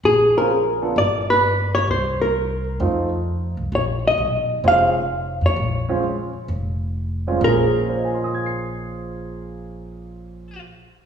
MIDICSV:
0, 0, Header, 1, 4, 480
1, 0, Start_track
1, 0, Key_signature, -5, "minor"
1, 0, Tempo, 460829
1, 48, Time_signature, 4, 2, 24, 8
1, 11517, End_track
2, 0, Start_track
2, 0, Title_t, "Hollow-body jazz guitar"
2, 0, Program_c, 0, 26
2, 56, Note_on_c, 0, 68, 78
2, 354, Note_off_c, 0, 68, 0
2, 393, Note_on_c, 0, 70, 75
2, 1017, Note_off_c, 0, 70, 0
2, 1022, Note_on_c, 0, 74, 97
2, 1348, Note_off_c, 0, 74, 0
2, 1355, Note_on_c, 0, 71, 84
2, 1789, Note_off_c, 0, 71, 0
2, 1819, Note_on_c, 0, 73, 88
2, 1957, Note_off_c, 0, 73, 0
2, 1986, Note_on_c, 0, 72, 79
2, 2307, Note_on_c, 0, 70, 66
2, 2309, Note_off_c, 0, 72, 0
2, 2744, Note_off_c, 0, 70, 0
2, 3907, Note_on_c, 0, 73, 77
2, 3992, Note_off_c, 0, 73, 0
2, 4244, Note_on_c, 0, 75, 83
2, 4867, Note_off_c, 0, 75, 0
2, 4872, Note_on_c, 0, 77, 105
2, 5686, Note_on_c, 0, 73, 72
2, 5688, Note_off_c, 0, 77, 0
2, 6588, Note_off_c, 0, 73, 0
2, 7754, Note_on_c, 0, 70, 79
2, 11042, Note_off_c, 0, 70, 0
2, 11517, End_track
3, 0, Start_track
3, 0, Title_t, "Upright piano"
3, 0, Program_c, 1, 0
3, 387, Note_on_c, 1, 61, 50
3, 388, Note_on_c, 1, 60, 60
3, 389, Note_on_c, 1, 65, 53
3, 393, Note_on_c, 1, 68, 64
3, 518, Note_off_c, 1, 61, 0
3, 519, Note_off_c, 1, 60, 0
3, 519, Note_off_c, 1, 65, 0
3, 521, Note_off_c, 1, 68, 0
3, 849, Note_on_c, 1, 59, 58
3, 855, Note_on_c, 1, 62, 57
3, 857, Note_on_c, 1, 65, 53
3, 861, Note_on_c, 1, 69, 65
3, 988, Note_off_c, 1, 59, 0
3, 991, Note_off_c, 1, 62, 0
3, 992, Note_off_c, 1, 65, 0
3, 995, Note_off_c, 1, 69, 0
3, 2919, Note_on_c, 1, 63, 49
3, 2920, Note_on_c, 1, 57, 52
3, 2920, Note_on_c, 1, 60, 51
3, 2925, Note_on_c, 1, 65, 62
3, 3213, Note_off_c, 1, 63, 0
3, 3214, Note_off_c, 1, 57, 0
3, 3214, Note_off_c, 1, 60, 0
3, 3216, Note_off_c, 1, 65, 0
3, 4834, Note_on_c, 1, 60, 56
3, 4835, Note_on_c, 1, 56, 64
3, 4838, Note_on_c, 1, 61, 57
3, 4839, Note_on_c, 1, 65, 67
3, 5132, Note_off_c, 1, 56, 0
3, 5132, Note_off_c, 1, 60, 0
3, 5134, Note_off_c, 1, 61, 0
3, 5134, Note_off_c, 1, 65, 0
3, 6129, Note_on_c, 1, 56, 61
3, 6137, Note_on_c, 1, 60, 60
3, 6138, Note_on_c, 1, 61, 64
3, 6139, Note_on_c, 1, 65, 72
3, 6269, Note_off_c, 1, 56, 0
3, 6273, Note_off_c, 1, 60, 0
3, 6273, Note_off_c, 1, 61, 0
3, 6274, Note_off_c, 1, 65, 0
3, 7573, Note_on_c, 1, 46, 55
3, 7578, Note_on_c, 1, 60, 52
3, 7582, Note_on_c, 1, 56, 52
3, 7583, Note_on_c, 1, 65, 67
3, 7584, Note_on_c, 1, 61, 52
3, 7659, Note_off_c, 1, 46, 0
3, 7674, Note_on_c, 1, 46, 59
3, 7707, Note_on_c, 1, 58, 60
3, 7715, Note_off_c, 1, 60, 0
3, 7717, Note_off_c, 1, 56, 0
3, 7717, Note_off_c, 1, 65, 0
3, 7718, Note_off_c, 1, 61, 0
3, 7735, Note_on_c, 1, 60, 57
3, 7771, Note_on_c, 1, 61, 58
3, 7797, Note_on_c, 1, 68, 68
3, 8221, Note_on_c, 1, 72, 41
3, 8296, Note_on_c, 1, 75, 40
3, 8381, Note_on_c, 1, 80, 42
3, 8481, Note_on_c, 1, 84, 36
3, 8585, Note_on_c, 1, 87, 36
3, 8690, Note_on_c, 1, 92, 35
3, 8815, Note_on_c, 1, 96, 32
3, 11004, Note_off_c, 1, 46, 0
3, 11037, Note_off_c, 1, 58, 0
3, 11065, Note_off_c, 1, 60, 0
3, 11101, Note_off_c, 1, 61, 0
3, 11127, Note_off_c, 1, 68, 0
3, 11509, Note_off_c, 1, 72, 0
3, 11517, Note_off_c, 1, 75, 0
3, 11517, Note_off_c, 1, 80, 0
3, 11517, Note_off_c, 1, 84, 0
3, 11517, Note_off_c, 1, 87, 0
3, 11517, Note_off_c, 1, 92, 0
3, 11517, Note_off_c, 1, 96, 0
3, 11517, End_track
4, 0, Start_track
4, 0, Title_t, "Upright bass"
4, 0, Program_c, 2, 32
4, 38, Note_on_c, 2, 34, 74
4, 958, Note_off_c, 2, 34, 0
4, 1000, Note_on_c, 2, 31, 75
4, 1918, Note_off_c, 2, 31, 0
4, 1953, Note_on_c, 2, 36, 73
4, 2875, Note_off_c, 2, 36, 0
4, 2914, Note_on_c, 2, 41, 85
4, 3682, Note_off_c, 2, 41, 0
4, 3720, Note_on_c, 2, 36, 64
4, 3867, Note_off_c, 2, 36, 0
4, 3874, Note_on_c, 2, 34, 80
4, 4324, Note_off_c, 2, 34, 0
4, 4350, Note_on_c, 2, 35, 74
4, 4803, Note_off_c, 2, 35, 0
4, 4830, Note_on_c, 2, 29, 76
4, 5602, Note_off_c, 2, 29, 0
4, 5637, Note_on_c, 2, 41, 63
4, 5786, Note_off_c, 2, 41, 0
4, 5795, Note_on_c, 2, 34, 79
4, 6720, Note_off_c, 2, 34, 0
4, 6753, Note_on_c, 2, 29, 77
4, 7680, Note_off_c, 2, 29, 0
4, 7719, Note_on_c, 2, 34, 81
4, 11007, Note_off_c, 2, 34, 0
4, 11517, End_track
0, 0, End_of_file